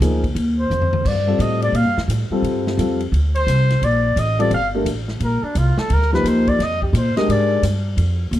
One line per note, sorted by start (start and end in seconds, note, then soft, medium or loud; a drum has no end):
0.00 0.34 D2 medium
0.00 0.22 F3 medium
0.00 0.22 A#3 medium
0.00 0.22 D#4 medium
0.00 0.22 G#4 medium
0.00 hi-hat pedal medium
0.00 ride medium
0.24 kick medium
0.24 ride soft
0.35 0.69 D#2 medium
0.35 ride medium
0.59 1.08 C5 medium
0.70 1.04 F2 medium
0.70 floor tom soft
0.70 hi-hat pedal medium
0.82 floor tom medium
0.93 floor tom medium
1.05 1.38 G2 medium
1.05 1.43 D5 medium
1.05 kick medium
1.05 crash medium
1.27 1.72 G3 medium
1.27 1.72 C4 medium
1.27 1.72 F4 soft
1.27 1.72 A4 medium
1.39 1.72 A2 loud
1.39 1.62 D#5 medium
1.39 hi-hat pedal medium
1.39 ride medium
1.62 1.77 D5 medium
1.62 ride soft
1.72 1.85 A#2 medium
1.72 1.97 F5 medium
1.72 ride medium
1.85 1.96 G2 medium
1.97 2.07 F2 medium
1.97 snare medium
2.08 2.29 A2 medium
2.08 hi-hat pedal medium
2.08 ride medium
2.30 2.76 G3 medium
2.30 2.76 C4 medium
2.30 2.76 F4 medium
2.30 2.76 A4 medium
2.30 muted upright bass stroke soft
2.42 2.77 G2 medium
2.42 ride medium
2.67 snare medium
2.78 3.11 F2 medium
2.78 2.99 G3 medium
2.78 2.98 C4 medium
2.78 2.98 F4 medium
2.78 2.99 A4 medium
2.78 hi-hat pedal medium
2.78 ride medium
3.00 ride soft
3.12 3.46 D2 medium
3.12 ride medium
3.35 3.86 C5 loud
3.35 ride soft
3.47 3.81 C2 medium
3.47 hi-hat pedal medium
3.47 ride medium
3.70 snare soft
3.70 ride soft
3.82 4.15 A#1 medium
3.82 4.21 D5 medium
3.82 ride medium
4.16 4.50 A1 medium
4.16 4.42 D#5 loud
4.16 hi-hat pedal medium
4.16 ride medium
4.39 4.50 G3 medium
4.39 4.50 C4 medium
4.39 4.50 F4 medium
4.39 4.50 A4 medium
4.39 4.52 D5 medium
4.39 ride soft
4.51 4.84 G1 medium
4.51 4.67 F5 loud
4.51 ride medium
4.75 4.85 A3 medium
4.75 4.85 D4 medium
4.75 4.85 G4 medium
4.75 4.85 A#4 medium
4.85 5.19 A1 medium
4.85 hi-hat pedal soft
4.85 ride medium
5.08 snare soft
5.20 5.41 A#1 medium
5.20 5.45 A#4 medium
5.20 ride medium
5.43 5.59 D4 medium
5.43 muted upright bass stroke soft
5.55 5.76 C2 medium
5.55 5.80 F4 medium
5.55 hi-hat pedal medium
5.55 ride medium
5.77 5.95 A4 medium
5.77 muted upright bass stroke soft
5.77 snare medium
5.90 6.23 D2 medium
5.90 6.13 A#4 medium
5.90 ride medium
6.02 snare soft
6.12 6.57 F3 medium
6.12 6.57 A#3 medium
6.12 6.57 D#4 medium
6.12 6.57 G4 medium
6.12 6.29 B4 medium
6.12 snare soft
6.24 6.58 D#2 medium
6.24 6.50 C5 medium
6.24 hi-hat pedal medium
6.24 ride medium
6.47 6.64 D5 medium
6.47 kick medium
6.47 ride soft
6.59 6.92 F2 medium
6.59 snare soft
6.59 ride medium
6.63 6.82 D#5 loud
6.82 6.98 G4 medium
6.82 kick medium
6.93 7.14 A#2 loud
6.93 7.16 C5 medium
6.93 hi-hat pedal medium
6.93 ride medium
7.16 7.61 G#3 medium
7.16 7.61 D4 medium
7.16 7.61 G4 medium
7.16 7.61 A#4 medium
7.16 7.32 D#5 medium
7.16 muted upright bass stroke soft
7.16 snare medium
7.16 ride soft
7.28 7.62 G#2 medium
7.28 7.64 D5 medium
7.28 ride medium
7.62 7.96 G2 medium
7.62 hi-hat pedal medium
7.62 ride medium
7.97 8.31 F2 medium
7.97 ride medium
8.31 8.40 D#2 loud
8.31 hi-hat pedal medium
8.31 ride medium